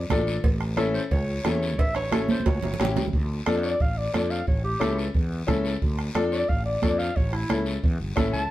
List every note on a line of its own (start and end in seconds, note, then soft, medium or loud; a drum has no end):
0.00 0.10 D5 loud
0.10 0.37 A1 medium
0.10 0.34 D4 medium
0.10 0.34 F4 medium
0.10 0.34 A4 medium
0.10 bombo low medium
0.10 bombo rim medium
0.10 high conga medium
0.10 low conga medium
0.10 low timbale medium
0.10 short guiro medium
0.27 short guiro medium
0.44 0.98 A1 loud
0.44 bombo low medium
0.44 cowbell loud
0.44 high conga soft
0.44 long guiro medium
0.61 bombo rim medium
0.77 1.01 C#4 medium
0.77 1.01 E4 medium
0.77 1.01 A4 loud
0.77 bombo rim medium
0.77 high conga medium
0.77 short guiro medium
0.94 1.02 C5 medium
0.94 short guiro medium
1.11 1.38 C#2 loud
1.11 1.43 C#5 medium
1.11 bombo low medium
1.11 cowbell medium
1.11 high conga soft
1.11 long guiro medium
1.44 1.79 E2 medium
1.44 1.68 C#4 medium
1.44 1.68 E4 medium
1.44 1.69 A4 medium
1.44 1.81 C#5 medium
1.44 bombo rim medium
1.44 high conga medium
1.44 low timbale medium
1.44 short guiro medium
1.62 short guiro medium
1.79 2.32 A1 loud
1.79 1.95 E5 loud
1.79 bombo low medium
1.79 cowbell loud
1.79 high conga soft
1.79 high timbale medium
1.79 long guiro medium
1.95 2.27 C#5 medium
1.95 bombo rim medium
1.95 high timbale loud
2.11 2.35 C#4 medium
2.11 2.35 E4 medium
2.11 2.36 A4 medium
2.11 bombo rim medium
2.11 high conga medium
2.11 low timbale medium
2.11 short guiro medium
2.29 2.48 C5 medium
2.29 high conga loud
2.29 short guiro medium
2.40 high conga medium
2.46 2.59 C#2 loud
2.46 2.96 C#5 medium
2.46 bombo low medium
2.46 cowbell medium
2.46 low timbale loud
2.46 long guiro medium
2.63 2.78 G1 medium
2.63 low conga medium
2.63 low timbale medium
2.74 low conga medium
2.79 2.95 A1 medium
2.79 3.03 C#4 medium
2.79 3.03 E4 medium
2.79 3.03 G4 medium
2.79 bombo rim medium
2.79 low timbale medium
2.79 short guiro medium
2.85 low conga loud
2.96 3.12 C#2 medium
2.96 low conga loud
2.96 low timbale medium
2.96 short guiro medium
3.08 low conga medium
3.13 3.40 D2 medium
3.13 bombo low medium
3.13 high conga soft
3.13 long guiro medium
3.46 3.74 F2 loud
3.46 3.70 D4 medium
3.46 3.70 F4 medium
3.46 3.70 A4 medium
3.46 bombo rim medium
3.46 high conga medium
3.46 short guiro medium
3.63 3.83 D5 medium
3.63 short guiro medium
3.80 4.07 A1 medium
3.80 3.99 F5 medium
3.80 bombo low medium
3.80 high conga soft
3.80 long guiro medium
3.98 4.12 D5 medium
4.13 4.41 F2 medium
4.13 4.37 D4 medium
4.13 4.37 F4 medium
4.13 4.38 A4 medium
4.13 4.32 D5 medium
4.13 bombo rim medium
4.13 high conga medium
4.13 short guiro medium
4.30 4.47 F5 medium
4.30 short guiro medium
4.47 4.74 A1 loud
4.47 4.64 C#5 medium
4.47 bombo low medium
4.47 high conga soft
4.47 long guiro medium
4.64 4.97 G4 medium
4.80 5.08 C#2 loud
4.80 5.04 C#4 medium
4.80 5.04 E4 medium
4.80 5.04 A4 medium
4.80 bombo rim medium
4.80 high conga medium
4.80 short guiro medium
4.99 short guiro medium
5.14 5.42 E2 medium
5.14 bombo low medium
5.14 high conga soft
5.14 long guiro medium
5.47 5.75 C#2 loud
5.47 5.71 C#4 medium
5.47 5.71 E4 medium
5.47 5.72 A4 loud
5.47 bombo low medium
5.47 bombo rim medium
5.47 high conga medium
5.47 low conga medium
5.47 short guiro medium
5.65 short guiro medium
5.82 6.09 D2 medium
5.82 bombo low medium
5.82 high conga soft
5.82 long guiro medium
5.99 bombo rim medium
6.15 6.42 F2 medium
6.15 6.39 D4 medium
6.15 6.39 F4 medium
6.15 6.39 A4 loud
6.15 bombo rim medium
6.15 high conga medium
6.15 short guiro medium
6.32 6.50 D5 loud
6.32 short guiro medium
6.48 6.76 A1 medium
6.48 6.65 F5 medium
6.48 bombo low medium
6.48 high conga soft
6.48 long guiro medium
6.65 6.81 D5 medium
6.82 7.10 F2 loud
6.82 7.06 D4 medium
6.82 7.06 F4 medium
6.82 7.06 A4 medium
6.82 7.00 D5 medium
6.82 bombo low medium
6.82 bombo rim medium
6.82 high conga medium
6.82 short guiro medium
6.98 7.18 F5 medium
6.98 short guiro medium
7.16 7.43 A1 loud
7.16 7.35 C#5 medium
7.16 bombo low medium
7.16 high conga soft
7.16 long guiro medium
7.33 7.66 E4 loud
7.33 bombo rim medium
7.50 7.77 C#2 loud
7.50 7.73 C#4 medium
7.50 7.73 E4 medium
7.50 7.74 A4 medium
7.50 bombo rim loud
7.50 high conga medium
7.50 short guiro medium
7.66 short guiro medium
7.83 7.97 E2 loud
7.83 bombo low medium
7.83 high conga soft
7.83 long guiro medium
8.00 8.15 G1 medium
8.16 8.32 A1 medium
8.16 8.40 C#4 medium
8.16 8.40 E4 medium
8.16 8.40 A4 medium
8.16 bombo low medium
8.16 bombo rim medium
8.16 high conga medium
8.16 low conga medium
8.16 short guiro medium
8.33 8.49 C#2 medium
8.33 8.51 A5 loud
8.33 short guiro medium